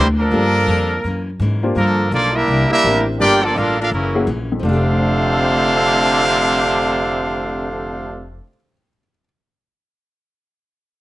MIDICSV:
0, 0, Header, 1, 7, 480
1, 0, Start_track
1, 0, Key_signature, -1, "major"
1, 0, Tempo, 358852
1, 431, Time_signature, 4, 2, 24, 8
1, 14718, End_track
2, 0, Start_track
2, 0, Title_t, "Trumpet section"
2, 0, Program_c, 0, 61
2, 255, Note_on_c, 0, 70, 99
2, 257, Note_on_c, 0, 69, 85
2, 258, Note_on_c, 0, 62, 87
2, 1341, Note_off_c, 0, 62, 0
2, 1341, Note_off_c, 0, 69, 0
2, 1643, Note_off_c, 0, 70, 0
2, 2349, Note_on_c, 0, 69, 81
2, 2351, Note_on_c, 0, 70, 89
2, 2352, Note_on_c, 0, 62, 73
2, 2798, Note_off_c, 0, 69, 0
2, 2799, Note_off_c, 0, 62, 0
2, 2799, Note_off_c, 0, 70, 0
2, 2843, Note_on_c, 0, 69, 79
2, 2846, Note_on_c, 0, 58, 87
2, 2846, Note_on_c, 0, 65, 82
2, 2849, Note_on_c, 0, 74, 106
2, 3121, Note_off_c, 0, 69, 0
2, 3122, Note_off_c, 0, 58, 0
2, 3123, Note_off_c, 0, 65, 0
2, 3124, Note_off_c, 0, 74, 0
2, 3133, Note_on_c, 0, 70, 91
2, 3138, Note_on_c, 0, 76, 95
2, 3145, Note_on_c, 0, 67, 79
2, 3148, Note_on_c, 0, 62, 78
2, 3613, Note_off_c, 0, 76, 0
2, 3616, Note_off_c, 0, 70, 0
2, 3619, Note_off_c, 0, 67, 0
2, 3623, Note_off_c, 0, 62, 0
2, 3629, Note_on_c, 0, 76, 110
2, 3632, Note_on_c, 0, 70, 85
2, 3635, Note_on_c, 0, 67, 89
2, 3637, Note_on_c, 0, 62, 85
2, 4070, Note_off_c, 0, 76, 0
2, 4072, Note_off_c, 0, 70, 0
2, 4073, Note_off_c, 0, 67, 0
2, 4075, Note_off_c, 0, 62, 0
2, 4282, Note_on_c, 0, 74, 107
2, 4284, Note_on_c, 0, 65, 97
2, 4286, Note_on_c, 0, 70, 93
2, 4290, Note_on_c, 0, 79, 112
2, 4561, Note_off_c, 0, 74, 0
2, 4562, Note_off_c, 0, 65, 0
2, 4563, Note_off_c, 0, 70, 0
2, 4565, Note_off_c, 0, 79, 0
2, 4588, Note_on_c, 0, 69, 86
2, 4591, Note_on_c, 0, 58, 89
2, 4594, Note_on_c, 0, 74, 99
2, 4595, Note_on_c, 0, 65, 81
2, 4760, Note_off_c, 0, 69, 0
2, 4762, Note_off_c, 0, 58, 0
2, 4763, Note_off_c, 0, 74, 0
2, 4764, Note_off_c, 0, 65, 0
2, 4781, Note_on_c, 0, 62, 83
2, 4784, Note_on_c, 0, 70, 86
2, 4789, Note_on_c, 0, 77, 101
2, 4790, Note_on_c, 0, 69, 88
2, 5067, Note_off_c, 0, 62, 0
2, 5072, Note_off_c, 0, 70, 0
2, 5072, Note_off_c, 0, 77, 0
2, 5076, Note_off_c, 0, 69, 0
2, 5083, Note_on_c, 0, 62, 89
2, 5088, Note_on_c, 0, 77, 99
2, 5091, Note_on_c, 0, 69, 77
2, 5091, Note_on_c, 0, 70, 79
2, 5236, Note_off_c, 0, 62, 0
2, 5239, Note_off_c, 0, 77, 0
2, 5241, Note_off_c, 0, 69, 0
2, 5241, Note_off_c, 0, 70, 0
2, 5250, Note_on_c, 0, 64, 73
2, 5252, Note_on_c, 0, 61, 67
2, 5260, Note_on_c, 0, 54, 71
2, 5260, Note_on_c, 0, 70, 79
2, 5689, Note_off_c, 0, 64, 0
2, 5691, Note_off_c, 0, 61, 0
2, 5695, Note_off_c, 0, 54, 0
2, 5695, Note_off_c, 0, 70, 0
2, 6206, Note_on_c, 0, 77, 113
2, 6207, Note_on_c, 0, 72, 84
2, 6210, Note_on_c, 0, 69, 93
2, 6216, Note_on_c, 0, 62, 93
2, 11057, Note_off_c, 0, 72, 0
2, 11057, Note_off_c, 0, 77, 0
2, 11059, Note_off_c, 0, 69, 0
2, 11062, Note_off_c, 0, 62, 0
2, 14718, End_track
3, 0, Start_track
3, 0, Title_t, "Grand piano"
3, 0, Program_c, 1, 0
3, 432, Note_on_c, 1, 58, 61
3, 434, Note_on_c, 1, 62, 52
3, 438, Note_on_c, 1, 65, 53
3, 439, Note_on_c, 1, 69, 69
3, 440, Note_on_c, 1, 67, 51
3, 705, Note_off_c, 1, 58, 0
3, 705, Note_off_c, 1, 62, 0
3, 708, Note_off_c, 1, 65, 0
3, 708, Note_off_c, 1, 69, 0
3, 709, Note_off_c, 1, 67, 0
3, 2178, Note_on_c, 1, 58, 81
3, 2179, Note_on_c, 1, 62, 68
3, 2181, Note_on_c, 1, 65, 70
3, 2190, Note_on_c, 1, 67, 66
3, 2192, Note_on_c, 1, 72, 76
3, 2337, Note_off_c, 1, 58, 0
3, 2337, Note_off_c, 1, 62, 0
3, 2338, Note_off_c, 1, 65, 0
3, 2343, Note_off_c, 1, 67, 0
3, 2344, Note_off_c, 1, 72, 0
3, 3798, Note_on_c, 1, 60, 67
3, 3802, Note_on_c, 1, 64, 57
3, 3804, Note_on_c, 1, 62, 59
3, 3813, Note_on_c, 1, 67, 52
3, 3813, Note_on_c, 1, 70, 70
3, 4277, Note_off_c, 1, 60, 0
3, 4279, Note_off_c, 1, 64, 0
3, 4280, Note_off_c, 1, 62, 0
3, 4284, Note_off_c, 1, 67, 0
3, 4284, Note_off_c, 1, 70, 0
3, 5542, Note_on_c, 1, 61, 63
3, 5542, Note_on_c, 1, 64, 67
3, 5545, Note_on_c, 1, 58, 77
3, 5551, Note_on_c, 1, 66, 72
3, 5556, Note_on_c, 1, 68, 88
3, 5700, Note_off_c, 1, 61, 0
3, 5700, Note_off_c, 1, 64, 0
3, 5701, Note_off_c, 1, 58, 0
3, 5704, Note_off_c, 1, 66, 0
3, 5707, Note_off_c, 1, 68, 0
3, 6044, Note_on_c, 1, 41, 63
3, 6126, Note_on_c, 1, 53, 55
3, 6208, Note_on_c, 1, 62, 50
3, 6294, Note_on_c, 1, 67, 62
3, 6375, Note_on_c, 1, 69, 67
3, 6675, Note_on_c, 1, 72, 41
3, 6783, Note_on_c, 1, 76, 43
3, 6890, Note_on_c, 1, 79, 42
3, 7009, Note_on_c, 1, 84, 41
3, 7140, Note_on_c, 1, 88, 35
3, 7446, Note_on_c, 1, 96, 34
3, 11108, Note_off_c, 1, 41, 0
3, 11190, Note_off_c, 1, 53, 0
3, 11272, Note_off_c, 1, 62, 0
3, 11358, Note_off_c, 1, 67, 0
3, 11439, Note_off_c, 1, 69, 0
3, 11686, Note_off_c, 1, 72, 0
3, 11793, Note_off_c, 1, 76, 0
3, 11901, Note_off_c, 1, 79, 0
3, 12020, Note_off_c, 1, 84, 0
3, 12150, Note_off_c, 1, 88, 0
3, 12373, Note_off_c, 1, 96, 0
3, 14718, End_track
4, 0, Start_track
4, 0, Title_t, "Steel-string acoustic guitar"
4, 0, Program_c, 2, 25
4, 0, Note_on_c, 2, 48, 56
4, 0, Note_on_c, 2, 52, 60
4, 0, Note_on_c, 2, 58, 59
4, 0, Note_on_c, 2, 62, 58
4, 270, Note_off_c, 2, 48, 0
4, 274, Note_off_c, 2, 52, 0
4, 279, Note_off_c, 2, 58, 0
4, 284, Note_off_c, 2, 62, 0
4, 410, Note_on_c, 2, 55, 45
4, 425, Note_on_c, 2, 58, 53
4, 440, Note_on_c, 2, 65, 58
4, 455, Note_on_c, 2, 69, 57
4, 742, Note_off_c, 2, 55, 0
4, 749, Note_off_c, 2, 58, 0
4, 757, Note_off_c, 2, 65, 0
4, 764, Note_off_c, 2, 69, 0
4, 910, Note_on_c, 2, 55, 74
4, 919, Note_on_c, 2, 58, 75
4, 930, Note_on_c, 2, 65, 88
4, 942, Note_on_c, 2, 69, 76
4, 1232, Note_off_c, 2, 55, 0
4, 1236, Note_off_c, 2, 58, 0
4, 1242, Note_off_c, 2, 65, 0
4, 1248, Note_off_c, 2, 69, 0
4, 1393, Note_on_c, 2, 42, 50
4, 1409, Note_on_c, 2, 52, 54
4, 1419, Note_on_c, 2, 58, 61
4, 1439, Note_on_c, 2, 61, 61
4, 1714, Note_off_c, 2, 42, 0
4, 1722, Note_off_c, 2, 52, 0
4, 1727, Note_off_c, 2, 58, 0
4, 1737, Note_off_c, 2, 61, 0
4, 1879, Note_on_c, 2, 42, 64
4, 1892, Note_on_c, 2, 52, 66
4, 1897, Note_on_c, 2, 58, 75
4, 1904, Note_on_c, 2, 61, 68
4, 2197, Note_off_c, 2, 42, 0
4, 2204, Note_off_c, 2, 52, 0
4, 2206, Note_off_c, 2, 58, 0
4, 2209, Note_off_c, 2, 61, 0
4, 2341, Note_on_c, 2, 55, 51
4, 2357, Note_on_c, 2, 58, 57
4, 2371, Note_on_c, 2, 65, 56
4, 2381, Note_on_c, 2, 69, 57
4, 2668, Note_off_c, 2, 55, 0
4, 2676, Note_off_c, 2, 58, 0
4, 2683, Note_off_c, 2, 65, 0
4, 2688, Note_off_c, 2, 69, 0
4, 2837, Note_on_c, 2, 55, 72
4, 2839, Note_on_c, 2, 58, 70
4, 2854, Note_on_c, 2, 65, 67
4, 2861, Note_on_c, 2, 69, 73
4, 3157, Note_off_c, 2, 55, 0
4, 3158, Note_off_c, 2, 58, 0
4, 3165, Note_off_c, 2, 65, 0
4, 3169, Note_off_c, 2, 69, 0
4, 3322, Note_on_c, 2, 48, 52
4, 3339, Note_on_c, 2, 52, 46
4, 3353, Note_on_c, 2, 58, 54
4, 3362, Note_on_c, 2, 62, 58
4, 3639, Note_off_c, 2, 48, 0
4, 3647, Note_off_c, 2, 52, 0
4, 3655, Note_off_c, 2, 58, 0
4, 3659, Note_off_c, 2, 62, 0
4, 3804, Note_on_c, 2, 48, 55
4, 3815, Note_on_c, 2, 52, 57
4, 3822, Note_on_c, 2, 58, 61
4, 3832, Note_on_c, 2, 62, 66
4, 4120, Note_off_c, 2, 48, 0
4, 4126, Note_off_c, 2, 52, 0
4, 4129, Note_off_c, 2, 58, 0
4, 4135, Note_off_c, 2, 62, 0
4, 4293, Note_on_c, 2, 55, 54
4, 4309, Note_on_c, 2, 58, 54
4, 4324, Note_on_c, 2, 65, 55
4, 4338, Note_on_c, 2, 69, 57
4, 4605, Note_off_c, 2, 55, 0
4, 4613, Note_off_c, 2, 58, 0
4, 4620, Note_off_c, 2, 65, 0
4, 4627, Note_off_c, 2, 69, 0
4, 4765, Note_on_c, 2, 55, 74
4, 4784, Note_on_c, 2, 58, 66
4, 4787, Note_on_c, 2, 65, 72
4, 4802, Note_on_c, 2, 69, 70
4, 5081, Note_off_c, 2, 55, 0
4, 5090, Note_off_c, 2, 58, 0
4, 5092, Note_off_c, 2, 65, 0
4, 5099, Note_off_c, 2, 69, 0
4, 5226, Note_on_c, 2, 42, 53
4, 5241, Note_on_c, 2, 52, 51
4, 5259, Note_on_c, 2, 58, 49
4, 5273, Note_on_c, 2, 61, 52
4, 5551, Note_off_c, 2, 42, 0
4, 5559, Note_off_c, 2, 52, 0
4, 5568, Note_off_c, 2, 58, 0
4, 5575, Note_off_c, 2, 61, 0
4, 5714, Note_on_c, 2, 42, 59
4, 5718, Note_on_c, 2, 52, 64
4, 5729, Note_on_c, 2, 58, 57
4, 5738, Note_on_c, 2, 61, 62
4, 6036, Note_off_c, 2, 42, 0
4, 6037, Note_off_c, 2, 52, 0
4, 6043, Note_off_c, 2, 58, 0
4, 6048, Note_off_c, 2, 61, 0
4, 6146, Note_on_c, 2, 53, 61
4, 6217, Note_on_c, 2, 57, 74
4, 6271, Note_on_c, 2, 62, 75
4, 6325, Note_on_c, 2, 67, 70
4, 11210, Note_off_c, 2, 53, 0
4, 11281, Note_off_c, 2, 57, 0
4, 11335, Note_off_c, 2, 62, 0
4, 11389, Note_off_c, 2, 67, 0
4, 14718, End_track
5, 0, Start_track
5, 0, Title_t, "Trombone section"
5, 0, Program_c, 3, 61
5, 241, Note_on_c, 3, 58, 75
5, 245, Note_on_c, 3, 50, 80
5, 250, Note_on_c, 3, 53, 79
5, 1335, Note_off_c, 3, 50, 0
5, 1337, Note_off_c, 3, 53, 0
5, 1636, Note_off_c, 3, 58, 0
5, 2330, Note_on_c, 3, 58, 78
5, 2337, Note_on_c, 3, 50, 77
5, 2342, Note_on_c, 3, 53, 86
5, 2788, Note_off_c, 3, 58, 0
5, 2791, Note_off_c, 3, 50, 0
5, 2794, Note_off_c, 3, 53, 0
5, 2826, Note_on_c, 3, 58, 83
5, 2830, Note_on_c, 3, 53, 79
5, 2830, Note_on_c, 3, 62, 77
5, 3112, Note_off_c, 3, 58, 0
5, 3114, Note_off_c, 3, 53, 0
5, 3114, Note_off_c, 3, 62, 0
5, 3122, Note_on_c, 3, 55, 85
5, 3126, Note_on_c, 3, 64, 91
5, 3127, Note_on_c, 3, 58, 84
5, 3583, Note_off_c, 3, 55, 0
5, 3588, Note_off_c, 3, 64, 0
5, 3592, Note_off_c, 3, 58, 0
5, 3599, Note_on_c, 3, 55, 94
5, 3604, Note_on_c, 3, 64, 93
5, 3608, Note_on_c, 3, 58, 102
5, 4055, Note_off_c, 3, 55, 0
5, 4057, Note_off_c, 3, 64, 0
5, 4059, Note_off_c, 3, 58, 0
5, 4260, Note_on_c, 3, 58, 105
5, 4262, Note_on_c, 3, 67, 101
5, 4266, Note_on_c, 3, 62, 109
5, 4549, Note_off_c, 3, 58, 0
5, 4550, Note_off_c, 3, 67, 0
5, 4552, Note_off_c, 3, 62, 0
5, 4580, Note_on_c, 3, 53, 88
5, 4585, Note_on_c, 3, 62, 88
5, 4586, Note_on_c, 3, 58, 85
5, 4731, Note_off_c, 3, 58, 0
5, 4739, Note_off_c, 3, 62, 0
5, 4747, Note_on_c, 3, 58, 89
5, 4754, Note_on_c, 3, 65, 90
5, 4755, Note_on_c, 3, 62, 89
5, 4756, Note_off_c, 3, 53, 0
5, 5054, Note_off_c, 3, 58, 0
5, 5058, Note_off_c, 3, 62, 0
5, 5058, Note_off_c, 3, 65, 0
5, 5071, Note_on_c, 3, 58, 80
5, 5073, Note_on_c, 3, 62, 77
5, 5081, Note_on_c, 3, 65, 82
5, 5230, Note_off_c, 3, 58, 0
5, 5231, Note_off_c, 3, 62, 0
5, 5235, Note_off_c, 3, 65, 0
5, 5257, Note_on_c, 3, 49, 67
5, 5263, Note_on_c, 3, 52, 64
5, 5266, Note_on_c, 3, 58, 68
5, 5693, Note_off_c, 3, 49, 0
5, 5697, Note_off_c, 3, 52, 0
5, 5698, Note_off_c, 3, 58, 0
5, 6196, Note_on_c, 3, 50, 104
5, 6200, Note_on_c, 3, 48, 110
5, 6205, Note_on_c, 3, 57, 112
5, 6210, Note_on_c, 3, 41, 101
5, 11052, Note_off_c, 3, 50, 0
5, 11054, Note_off_c, 3, 48, 0
5, 11056, Note_off_c, 3, 57, 0
5, 11059, Note_off_c, 3, 41, 0
5, 14718, End_track
6, 0, Start_track
6, 0, Title_t, "Upright bass"
6, 0, Program_c, 4, 32
6, 0, Note_on_c, 4, 38, 108
6, 412, Note_off_c, 4, 38, 0
6, 418, Note_on_c, 4, 43, 87
6, 891, Note_off_c, 4, 43, 0
6, 897, Note_on_c, 4, 41, 83
6, 1371, Note_off_c, 4, 41, 0
6, 1391, Note_on_c, 4, 42, 80
6, 1858, Note_off_c, 4, 42, 0
6, 1867, Note_on_c, 4, 44, 95
6, 2336, Note_off_c, 4, 44, 0
6, 2350, Note_on_c, 4, 43, 86
6, 2818, Note_off_c, 4, 43, 0
6, 2828, Note_on_c, 4, 35, 83
6, 3297, Note_off_c, 4, 35, 0
6, 3311, Note_on_c, 4, 36, 92
6, 3595, Note_off_c, 4, 36, 0
6, 3802, Note_on_c, 4, 33, 99
6, 4264, Note_off_c, 4, 33, 0
6, 4286, Note_on_c, 4, 31, 81
6, 4747, Note_off_c, 4, 31, 0
6, 4763, Note_on_c, 4, 33, 88
6, 5225, Note_off_c, 4, 33, 0
6, 5233, Note_on_c, 4, 30, 91
6, 5700, Note_off_c, 4, 30, 0
6, 5709, Note_on_c, 4, 34, 96
6, 6178, Note_off_c, 4, 34, 0
6, 6193, Note_on_c, 4, 29, 100
6, 11204, Note_off_c, 4, 29, 0
6, 14718, End_track
7, 0, Start_track
7, 0, Title_t, "Muted upright bass strokes"
7, 3621, Note_on_c, 9, 29, 40
7, 3755, Note_off_c, 9, 29, 0
7, 14718, End_track
0, 0, End_of_file